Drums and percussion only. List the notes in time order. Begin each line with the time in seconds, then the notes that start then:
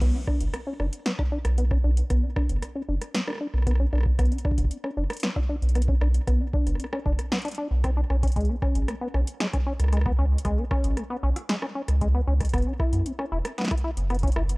0.00 kick, snare, closed hi-hat, crash
0.04 snare
0.07 snare
0.27 kick, cross-stick
0.41 closed hi-hat
0.54 cross-stick, closed hi-hat
0.80 cross-stick
0.93 closed hi-hat
1.06 snare, closed hi-hat
1.19 kick, cross-stick
1.45 cross-stick, closed hi-hat
1.58 closed hi-hat
1.71 kick, cross-stick
1.97 closed hi-hat
2.10 kick, cross-stick, closed hi-hat
2.36 kick, cross-stick
2.49 closed hi-hat
2.62 cross-stick, closed hi-hat
3.01 cross-stick, closed hi-hat
3.14 snare, closed hi-hat
3.28 cross-stick
3.30 cross-stick
3.33 cross-stick
3.35 cross-stick
3.38 cross-stick
3.54 cross-stick
3.58 cross-stick
3.62 cross-stick
3.67 kick, cross-stick, closed hi-hat
3.71 cross-stick
3.75 cross-stick
3.93 cross-stick
3.95 cross-stick
3.98 cross-stick
4.01 cross-stick
4.03 kick, cross-stick
4.19 kick, cross-stick, closed hi-hat
4.25 closed hi-hat
4.32 closed hi-hat
4.38 closed hi-hat
4.45 kick, cross-stick
4.51 kick
4.58 kick, closed hi-hat
4.64 kick
4.71 closed hi-hat
4.84 cross-stick
5.10 cross-stick, closed hi-hat
5.13 closed hi-hat
5.17 closed hi-hat
5.20 snare, closed hi-hat
5.23 closed hi-hat
5.36 kick, cross-stick
5.62 closed hi-hat
5.69 closed hi-hat
5.75 cross-stick, closed hi-hat
5.82 closed hi-hat
5.88 kick
6.01 cross-stick
6.14 closed hi-hat
6.27 kick, cross-stick, closed hi-hat
6.54 kick
6.67 cross-stick, closed hi-hat
6.75 cross-stick
6.80 closed hi-hat
6.84 cross-stick
6.93 cross-stick
7.06 kick
7.19 cross-stick, closed hi-hat
7.32 snare, closed hi-hat
7.35 closed hi-hat
7.38 closed hi-hat
7.42 closed hi-hat
7.45 closed hi-hat
7.48 closed hi-hat
7.51 closed hi-hat
7.55 closed hi-hat
7.84 kick, cross-stick, closed hi-hat
8.10 cross-stick
8.23 kick, closed hi-hat
8.28 closed hi-hat
8.32 closed hi-hat
8.36 kick, closed hi-hat
8.41 closed hi-hat
8.45 closed hi-hat
8.62 kick, cross-stick
8.75 closed hi-hat
8.88 cross-stick, closed hi-hat
9.14 cross-stick
9.27 closed hi-hat
9.40 snare
9.54 kick, cross-stick, closed hi-hat
9.80 cross-stick, closed hi-hat
9.84 cross-stick
9.88 cross-stick
9.93 cross-stick, closed hi-hat
9.97 cross-stick
10.01 cross-stick
10.06 kick, cross-stick
10.38 closed hi-hat
10.45 kick, cross-stick, closed hi-hat
10.71 kick, cross-stick
10.84 closed hi-hat
10.97 cross-stick, closed hi-hat
11.36 cross-stick, closed hi-hat
11.49 snare, closed hi-hat
11.62 cross-stick
11.88 cross-stick, closed hi-hat
12.01 kick, closed hi-hat
12.41 kick, cross-stick, closed hi-hat
12.45 closed hi-hat
12.49 closed hi-hat
12.54 kick, cross-stick, closed hi-hat
12.58 closed hi-hat
12.62 closed hi-hat
12.80 kick, cross-stick
12.93 closed hi-hat
13.06 closed hi-hat
13.19 cross-stick
13.45 cross-stick, closed hi-hat
13.58 snare, closed hi-hat
13.61 snare
13.65 snare, closed hi-hat
13.68 kick, cross-stick, snare, closed hi-hat
13.78 closed hi-hat
13.97 closed hi-hat
14.10 cross-stick, closed hi-hat
14.14 closed hi-hat
14.19 closed hi-hat
14.23 kick, closed hi-hat
14.27 closed hi-hat
14.32 closed hi-hat
14.36 cross-stick
14.49 closed hi-hat